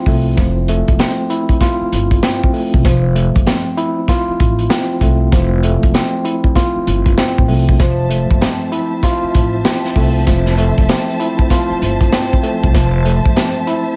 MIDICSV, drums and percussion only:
0, 0, Header, 1, 2, 480
1, 0, Start_track
1, 0, Key_signature, -1, "major"
1, 0, Tempo, 618557
1, 290, Time_signature, 4, 2, 24, 8
1, 10835, End_track
2, 0, Start_track
2, 0, Title_t, "Drums"
2, 48, Note_on_c, 9, 36, 94
2, 49, Note_on_c, 9, 46, 52
2, 125, Note_off_c, 9, 36, 0
2, 126, Note_off_c, 9, 46, 0
2, 290, Note_on_c, 9, 42, 94
2, 291, Note_on_c, 9, 36, 115
2, 367, Note_off_c, 9, 42, 0
2, 369, Note_off_c, 9, 36, 0
2, 529, Note_on_c, 9, 42, 72
2, 607, Note_off_c, 9, 42, 0
2, 683, Note_on_c, 9, 42, 60
2, 686, Note_on_c, 9, 36, 97
2, 760, Note_off_c, 9, 42, 0
2, 763, Note_off_c, 9, 36, 0
2, 769, Note_on_c, 9, 42, 91
2, 774, Note_on_c, 9, 38, 111
2, 774, Note_on_c, 9, 40, 90
2, 847, Note_off_c, 9, 42, 0
2, 852, Note_off_c, 9, 38, 0
2, 852, Note_off_c, 9, 40, 0
2, 1010, Note_on_c, 9, 42, 68
2, 1088, Note_off_c, 9, 42, 0
2, 1157, Note_on_c, 9, 36, 92
2, 1164, Note_on_c, 9, 42, 53
2, 1235, Note_off_c, 9, 36, 0
2, 1242, Note_off_c, 9, 42, 0
2, 1247, Note_on_c, 9, 36, 96
2, 1250, Note_on_c, 9, 42, 103
2, 1324, Note_off_c, 9, 36, 0
2, 1327, Note_off_c, 9, 42, 0
2, 1494, Note_on_c, 9, 42, 84
2, 1571, Note_off_c, 9, 42, 0
2, 1638, Note_on_c, 9, 36, 95
2, 1641, Note_on_c, 9, 42, 54
2, 1715, Note_off_c, 9, 36, 0
2, 1718, Note_off_c, 9, 42, 0
2, 1729, Note_on_c, 9, 38, 106
2, 1729, Note_on_c, 9, 40, 84
2, 1732, Note_on_c, 9, 42, 96
2, 1807, Note_off_c, 9, 38, 0
2, 1807, Note_off_c, 9, 40, 0
2, 1810, Note_off_c, 9, 42, 0
2, 1890, Note_on_c, 9, 36, 98
2, 1967, Note_off_c, 9, 36, 0
2, 1969, Note_on_c, 9, 46, 53
2, 2046, Note_off_c, 9, 46, 0
2, 2125, Note_on_c, 9, 36, 102
2, 2203, Note_off_c, 9, 36, 0
2, 2210, Note_on_c, 9, 42, 93
2, 2211, Note_on_c, 9, 36, 120
2, 2287, Note_off_c, 9, 42, 0
2, 2288, Note_off_c, 9, 36, 0
2, 2450, Note_on_c, 9, 42, 74
2, 2528, Note_off_c, 9, 42, 0
2, 2604, Note_on_c, 9, 42, 57
2, 2606, Note_on_c, 9, 36, 98
2, 2681, Note_off_c, 9, 42, 0
2, 2683, Note_off_c, 9, 36, 0
2, 2690, Note_on_c, 9, 42, 88
2, 2694, Note_on_c, 9, 38, 112
2, 2695, Note_on_c, 9, 40, 89
2, 2767, Note_off_c, 9, 42, 0
2, 2772, Note_off_c, 9, 38, 0
2, 2772, Note_off_c, 9, 40, 0
2, 2930, Note_on_c, 9, 42, 69
2, 3008, Note_off_c, 9, 42, 0
2, 3167, Note_on_c, 9, 36, 98
2, 3170, Note_on_c, 9, 42, 106
2, 3244, Note_off_c, 9, 36, 0
2, 3248, Note_off_c, 9, 42, 0
2, 3413, Note_on_c, 9, 42, 82
2, 3415, Note_on_c, 9, 36, 98
2, 3491, Note_off_c, 9, 42, 0
2, 3493, Note_off_c, 9, 36, 0
2, 3560, Note_on_c, 9, 42, 53
2, 3638, Note_off_c, 9, 42, 0
2, 3649, Note_on_c, 9, 38, 108
2, 3649, Note_on_c, 9, 40, 87
2, 3652, Note_on_c, 9, 42, 94
2, 3727, Note_off_c, 9, 38, 0
2, 3727, Note_off_c, 9, 40, 0
2, 3730, Note_off_c, 9, 42, 0
2, 3888, Note_on_c, 9, 36, 92
2, 3888, Note_on_c, 9, 42, 73
2, 3965, Note_off_c, 9, 36, 0
2, 3965, Note_off_c, 9, 42, 0
2, 4129, Note_on_c, 9, 42, 94
2, 4131, Note_on_c, 9, 36, 121
2, 4207, Note_off_c, 9, 42, 0
2, 4209, Note_off_c, 9, 36, 0
2, 4370, Note_on_c, 9, 42, 74
2, 4448, Note_off_c, 9, 42, 0
2, 4523, Note_on_c, 9, 42, 59
2, 4526, Note_on_c, 9, 36, 96
2, 4601, Note_off_c, 9, 42, 0
2, 4604, Note_off_c, 9, 36, 0
2, 4610, Note_on_c, 9, 42, 88
2, 4614, Note_on_c, 9, 38, 117
2, 4614, Note_on_c, 9, 40, 94
2, 4687, Note_off_c, 9, 42, 0
2, 4692, Note_off_c, 9, 38, 0
2, 4692, Note_off_c, 9, 40, 0
2, 4851, Note_on_c, 9, 42, 70
2, 4929, Note_off_c, 9, 42, 0
2, 4998, Note_on_c, 9, 36, 93
2, 5075, Note_off_c, 9, 36, 0
2, 5087, Note_on_c, 9, 36, 97
2, 5090, Note_on_c, 9, 42, 103
2, 5164, Note_off_c, 9, 36, 0
2, 5168, Note_off_c, 9, 42, 0
2, 5334, Note_on_c, 9, 42, 83
2, 5411, Note_off_c, 9, 42, 0
2, 5478, Note_on_c, 9, 36, 96
2, 5480, Note_on_c, 9, 42, 54
2, 5555, Note_off_c, 9, 36, 0
2, 5558, Note_off_c, 9, 42, 0
2, 5569, Note_on_c, 9, 38, 110
2, 5569, Note_on_c, 9, 40, 88
2, 5572, Note_on_c, 9, 42, 91
2, 5647, Note_off_c, 9, 38, 0
2, 5647, Note_off_c, 9, 40, 0
2, 5650, Note_off_c, 9, 42, 0
2, 5730, Note_on_c, 9, 36, 97
2, 5807, Note_off_c, 9, 36, 0
2, 5808, Note_on_c, 9, 46, 54
2, 5886, Note_off_c, 9, 46, 0
2, 5965, Note_on_c, 9, 36, 102
2, 6042, Note_off_c, 9, 36, 0
2, 6049, Note_on_c, 9, 42, 91
2, 6051, Note_on_c, 9, 36, 121
2, 6127, Note_off_c, 9, 42, 0
2, 6128, Note_off_c, 9, 36, 0
2, 6290, Note_on_c, 9, 42, 72
2, 6367, Note_off_c, 9, 42, 0
2, 6445, Note_on_c, 9, 36, 98
2, 6523, Note_off_c, 9, 36, 0
2, 6530, Note_on_c, 9, 42, 89
2, 6534, Note_on_c, 9, 38, 117
2, 6535, Note_on_c, 9, 40, 92
2, 6607, Note_off_c, 9, 42, 0
2, 6612, Note_off_c, 9, 38, 0
2, 6612, Note_off_c, 9, 40, 0
2, 6770, Note_on_c, 9, 42, 68
2, 6847, Note_off_c, 9, 42, 0
2, 7006, Note_on_c, 9, 36, 97
2, 7009, Note_on_c, 9, 42, 102
2, 7083, Note_off_c, 9, 36, 0
2, 7086, Note_off_c, 9, 42, 0
2, 7252, Note_on_c, 9, 42, 81
2, 7254, Note_on_c, 9, 36, 99
2, 7329, Note_off_c, 9, 42, 0
2, 7332, Note_off_c, 9, 36, 0
2, 7488, Note_on_c, 9, 38, 108
2, 7488, Note_on_c, 9, 40, 87
2, 7491, Note_on_c, 9, 42, 91
2, 7565, Note_off_c, 9, 38, 0
2, 7565, Note_off_c, 9, 40, 0
2, 7569, Note_off_c, 9, 42, 0
2, 7641, Note_on_c, 9, 38, 33
2, 7719, Note_off_c, 9, 38, 0
2, 7727, Note_on_c, 9, 36, 93
2, 7727, Note_on_c, 9, 46, 51
2, 7805, Note_off_c, 9, 36, 0
2, 7805, Note_off_c, 9, 46, 0
2, 7969, Note_on_c, 9, 42, 89
2, 7970, Note_on_c, 9, 36, 117
2, 8046, Note_off_c, 9, 42, 0
2, 8048, Note_off_c, 9, 36, 0
2, 8118, Note_on_c, 9, 38, 40
2, 8196, Note_off_c, 9, 38, 0
2, 8209, Note_on_c, 9, 42, 75
2, 8286, Note_off_c, 9, 42, 0
2, 8362, Note_on_c, 9, 42, 57
2, 8365, Note_on_c, 9, 36, 97
2, 8440, Note_off_c, 9, 42, 0
2, 8443, Note_off_c, 9, 36, 0
2, 8449, Note_on_c, 9, 42, 91
2, 8454, Note_on_c, 9, 38, 111
2, 8454, Note_on_c, 9, 40, 90
2, 8527, Note_off_c, 9, 42, 0
2, 8531, Note_off_c, 9, 38, 0
2, 8531, Note_off_c, 9, 40, 0
2, 8691, Note_on_c, 9, 42, 69
2, 8768, Note_off_c, 9, 42, 0
2, 8837, Note_on_c, 9, 36, 91
2, 8915, Note_off_c, 9, 36, 0
2, 8926, Note_on_c, 9, 36, 96
2, 8930, Note_on_c, 9, 42, 103
2, 9004, Note_off_c, 9, 36, 0
2, 9007, Note_off_c, 9, 42, 0
2, 9174, Note_on_c, 9, 42, 86
2, 9252, Note_off_c, 9, 42, 0
2, 9317, Note_on_c, 9, 36, 96
2, 9320, Note_on_c, 9, 42, 54
2, 9395, Note_off_c, 9, 36, 0
2, 9398, Note_off_c, 9, 42, 0
2, 9409, Note_on_c, 9, 38, 115
2, 9409, Note_on_c, 9, 40, 90
2, 9412, Note_on_c, 9, 42, 94
2, 9486, Note_off_c, 9, 38, 0
2, 9487, Note_off_c, 9, 40, 0
2, 9490, Note_off_c, 9, 42, 0
2, 9569, Note_on_c, 9, 36, 101
2, 9647, Note_off_c, 9, 36, 0
2, 9649, Note_on_c, 9, 42, 73
2, 9726, Note_off_c, 9, 42, 0
2, 9805, Note_on_c, 9, 36, 103
2, 9882, Note_off_c, 9, 36, 0
2, 9890, Note_on_c, 9, 42, 92
2, 9891, Note_on_c, 9, 36, 115
2, 9968, Note_off_c, 9, 36, 0
2, 9968, Note_off_c, 9, 42, 0
2, 10131, Note_on_c, 9, 42, 76
2, 10208, Note_off_c, 9, 42, 0
2, 10286, Note_on_c, 9, 36, 98
2, 10363, Note_off_c, 9, 36, 0
2, 10370, Note_on_c, 9, 42, 90
2, 10375, Note_on_c, 9, 38, 115
2, 10375, Note_on_c, 9, 40, 89
2, 10447, Note_off_c, 9, 42, 0
2, 10452, Note_off_c, 9, 38, 0
2, 10452, Note_off_c, 9, 40, 0
2, 10610, Note_on_c, 9, 42, 72
2, 10688, Note_off_c, 9, 42, 0
2, 10835, End_track
0, 0, End_of_file